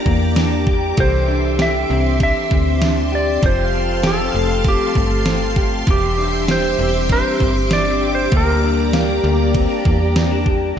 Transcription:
Already playing: D4 E4 G4 A#4 D5 A#5 D6
0.06 E2 A#3, kick
0.36 D4, snare, ride, tambourine
0.67 G4, kick
0.97 C2 E3 G4 A4 C5 E5 C6, kick, ride
1.28 D4
1.58 G4 E5, snare, ride, tambourine
1.89 C2 C4
2.20 D4 G4 E5, kick, ride
2.51 D2 C4, kick
2.81 D4, snare, ride, tambourine
3.12 G4 D5
3.42 F1 F3 G4 C5 F5 A5, kick, ride
3.64 F5
3.73 C4
4.03 G4 A4, snare, ride, tambourine
4.07 A4
4.25 C5
4.34 F1 A3
4.64 C4, kick, ride
4.68 G4
4.95 G1 A3, kick
5.26 C4 C5, snare, ride, tambourine
5.56 G4, kick
5.87 E1 E3 G4 E5 D6, kick, ride
5.91 G4
6.18 D4
6.48 G4 C5, snare, ride, tambourine
6.79 E1 C4
7.09 D4 C5, kick, ride
7.40 G1 C4, kick
7.71 D4 D5, snare, ride, tambourine
8.01 G4
8.15 C5
8.32 D2 A#3 G4 D5 A#5, kick, ride
8.37 A#4
8.63 D4
8.93 G4 F5, snare, ride, tambourine
9.24 D2 A#3
9.54 C4, kick, ride
9.70 D4
9.85 E2 A#3, kick
10.16 C4 A#5, snare, ride, tambourine
10.31 D4
10.46 G4, kick

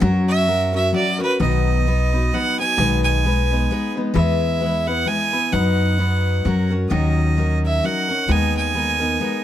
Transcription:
0.00 F#2 F#3 C#4 F#4 A#4
0.28 E5
0.47 F#3 C#4 F#4 A#4
0.73 C#4 F#4 A#4 E5
0.93 F#3 C#4 F#4 A#4 D5
1.18 C#4 F#4 A#4 B4
1.40 B1 B2 D#3 F#3 B3 D#4 B4 D#5
1.87 F#3 B3 D#4 B4
2.13 F#3 B3 D#4 B4
2.33 F#3 B3 D#4 B4 F#5
2.60 F#3 B3 D#4 B4 G#5
2.78 B1 B2 D#3 G#3 B3 D#4 B4
3.04 G#5
3.24 G#3 B3 D#4 B4
3.51 G#3 B3 D#4 B4
3.71 G#3 B3 D#4 B4
3.96 G#3 B3 D#4 B4
4.14 E2 E3 G#3 B3 E4 B4 E5
4.60 G#3 B3 E4 B4
4.87 B3 E4 B4 F#5
5.06 G#3 B3 E4 B4 G#5
5.33 B3 E4 B4
5.52 F#2 F#3 B3 D#4 B4 F#5
5.98 F#3 B3 D#4 B4
6.45 F#2 F#3 C#4 F#4 A#4
6.70 C#4 F#4 A#4
6.90 D#2 D#3 F#3 C#4 D#4 A#4 D#5
7.37 F#3 C#4 D#4 A#4
7.65 E5
7.83 F#3 C#4 D#4 A#4 F#5
8.08 C#4 D#4 A#4
8.28 D#2 D#3 G#3 B3 D#4 A#4
8.32 G#5
8.57 G#5
8.74 G#3 B3 D#4 A#4
9.00 B3 D#4 A#4
9.20 G#3 B3 D#4 A#4

